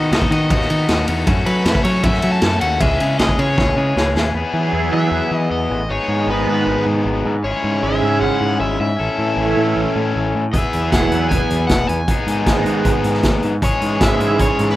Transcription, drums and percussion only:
0.12 snare, ride
0.22 kick
0.32 ride
0.50 kick, ride
0.61 snare
0.70 ride
0.88 snare, ride
1.08 ride
1.27 kick, ride
1.46 ride
1.65 snare, ride
1.75 kick
1.84 ride
2.03 kick, ride
2.13 snare
2.22 ride
2.41 snare, ride
2.61 ride
2.80 kick, ride
3.00 ride
3.19 snare, ride
3.29 kick
3.39 ride
3.58 kick, snare
3.97 snare
4.17 snare
10.54 kick, closed hi-hat
10.73 closed hi-hat
10.92 kick, snare, closed hi-hat
11.12 closed hi-hat
11.31 kick, closed hi-hat
11.50 closed hi-hat
11.69 kick, snare, closed hi-hat
11.89 closed hi-hat
12.08 kick, closed hi-hat
12.28 closed hi-hat
12.46 kick, snare, closed hi-hat
12.66 closed hi-hat
12.85 kick, closed hi-hat
13.04 closed hi-hat
13.13 snare
13.23 kick, snare, closed hi-hat
13.43 closed hi-hat
13.62 kick, closed hi-hat
13.81 closed hi-hat
14.00 kick, snare, closed hi-hat
14.20 closed hi-hat
14.39 kick, closed hi-hat
14.59 closed hi-hat
14.69 snare

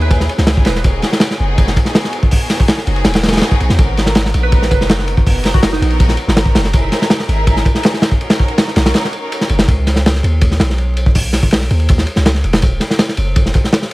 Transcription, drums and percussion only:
0.01 ride
0.11 kick, ride
0.20 snare
0.29 ride
0.38 snare
0.47 snare, ride
0.57 kick
0.65 snare, ride
0.75 snare
0.84 kick, ride
1.02 snare, ride
1.12 snare
1.20 snare, ride
1.30 snare
1.58 kick, ride
1.67 snare
1.76 kick, ride
1.85 snare
1.95 snare, ride
2.04 snare
2.13 ride
2.23 kick
2.31 kick, open hi-hat
2.50 snare, ride
2.60 kick
2.68 snare, ride
2.78 snare
2.87 ride
2.96 ride
3.04 snare, ride
3.14 snare, ride
3.23 snare, ride
3.28 snare, ride
3.32 snare, ride
3.37 snare, ride
3.41 snare, ride
3.51 kick
3.60 ride
3.69 snare
3.79 kick, ride
3.97 snare, ride
4.06 snare
4.15 snare, ride
4.25 snare
4.34 ride
4.52 kick, ride
4.62 snare
4.71 kick, ride
4.81 snare
4.89 snare, ride
4.99 snare
5.08 ride
5.17 kick
5.27 kick, open hi-hat
5.44 snare, ride
5.54 kick
5.63 snare, ride
5.72 snare
5.82 ride
5.90 ride
6.00 kick, ride
6.09 snare
6.17 ride
6.28 snare
6.37 snare, ride
6.46 kick
6.55 snare, ride
6.64 snare
6.73 kick, ride
6.92 snare, ride
7.02 snare
7.10 snare, ride
7.19 snare
7.29 ride
7.47 kick, ride
7.56 snare
7.65 kick, ride
7.75 snare
7.83 snare, ride
7.94 snare
8.02 snare, ride
8.11 kick
8.21 ride
8.30 snare, ride
8.40 kick
8.48 ride
8.58 snare, ride
8.68 snare
8.76 snare, ride
8.86 snare, ride
8.94 snare, ride
9.05 snare
9.13 ride
9.32 ride
9.41 snare
9.49 ride
9.59 snare, ride
9.68 kick, ride
9.87 snare, ride
9.96 snare
10.06 snare, ride
10.15 snare
10.24 ride
10.41 kick, ride
10.51 snare
10.60 snare, ride
10.70 snare
10.78 ride
10.97 ride
11.06 kick
11.15 kick, open hi-hat
11.33 snare, ride
11.43 kick
11.51 snare, ride
11.61 snare
11.71 ride
11.80 ride
11.89 kick, ride
11.98 snare
12.07 ride
12.16 snare
12.26 snare, ride
12.34 snare
12.44 ride
12.53 snare, ride
12.62 kick, ride
12.80 snare, ride
12.90 snare
12.99 snare, ride
13.09 snare
13.17 ride
13.36 kick, ride
13.46 snare
13.54 kick, ride
13.64 snare
13.73 snare, ride
13.82 snare

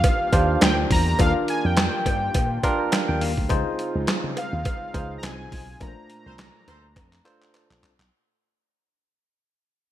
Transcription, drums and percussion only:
0.04 kick, closed hi-hat, cowbell
0.33 kick, closed hi-hat, cowbell
0.61 snare, clap, closed hi-hat, cowbell
0.91 kick, open hi-hat
1.19 kick, closed hi-hat, cowbell
1.48 closed hi-hat
1.77 snare, clap, closed hi-hat, cowbell
2.06 kick, closed hi-hat, cowbell
2.34 kick, closed hi-hat, cowbell
2.63 kick, closed hi-hat, cowbell
2.92 snare, clap, closed hi-hat, cowbell
3.21 open hi-hat
3.38 kick
3.49 kick, closed hi-hat, cowbell
3.79 closed hi-hat
4.07 snare, clap, closed hi-hat, cowbell
4.37 closed hi-hat, cowbell
4.65 kick, closed hi-hat, cowbell
4.94 kick, closed hi-hat, cowbell
5.23 snare, clap, closed hi-hat, cowbell
5.52 kick, open hi-hat
5.81 kick, closed hi-hat, cowbell
6.10 closed hi-hat
6.38 snare, clap, closed hi-hat, cowbell
6.68 closed hi-hat, cowbell
6.96 kick, clap, closed hi-hat, cowbell
7.13 clap, closed hi-hat
7.25 clap, closed hi-hat, cowbell
7.42 clap
7.54 clap, closed hi-hat, cowbell
7.71 clap
7.83 clap, closed hi-hat
8.00 clap

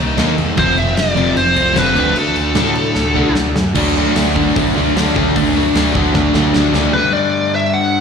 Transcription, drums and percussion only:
0.18 snare, crash
0.38 crash
0.57 kick, crash
0.78 crash
0.97 snare, crash
1.17 crash
1.37 crash
1.56 crash
1.76 snare, crash
1.96 crash
2.16 crash
2.36 crash
2.55 snare, crash
2.75 crash
2.95 snare
3.35 snare
3.56 snare
3.75 kick, crash
4.16 snare, open hi-hat
4.36 kick
4.56 kick, open hi-hat
4.97 snare, open hi-hat
5.16 kick
5.36 kick, open hi-hat
5.75 snare, open hi-hat
5.95 kick
6.14 kick, snare
6.34 snare
6.54 snare
6.74 snare

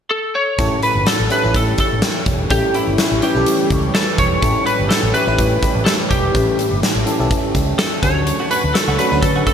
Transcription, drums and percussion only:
0.59 kick, closed hi-hat
0.83 closed hi-hat
1.06 snare, closed hi-hat
1.30 closed hi-hat
1.54 kick, closed hi-hat
1.78 kick, closed hi-hat
2.02 snare, closed hi-hat
2.26 kick, closed hi-hat
2.50 kick, closed hi-hat
2.74 closed hi-hat
2.98 snare, closed hi-hat
3.22 closed hi-hat
3.46 closed hi-hat
3.70 kick, closed hi-hat
3.95 snare, closed hi-hat
4.18 kick, closed hi-hat
4.42 kick, closed hi-hat
4.67 closed hi-hat
4.91 snare, closed hi-hat
5.14 closed hi-hat
5.39 kick, closed hi-hat
5.63 kick, closed hi-hat
5.86 snare, closed hi-hat
6.11 kick, closed hi-hat
6.35 kick, closed hi-hat
6.59 closed hi-hat
6.83 snare, closed hi-hat
7.07 closed hi-hat
7.31 kick, closed hi-hat
7.55 kick, closed hi-hat
7.79 snare, closed hi-hat
8.03 kick, closed hi-hat
8.27 closed hi-hat
8.51 closed hi-hat
8.75 snare, closed hi-hat
8.99 closed hi-hat
9.22 kick, closed hi-hat
9.47 kick, closed hi-hat

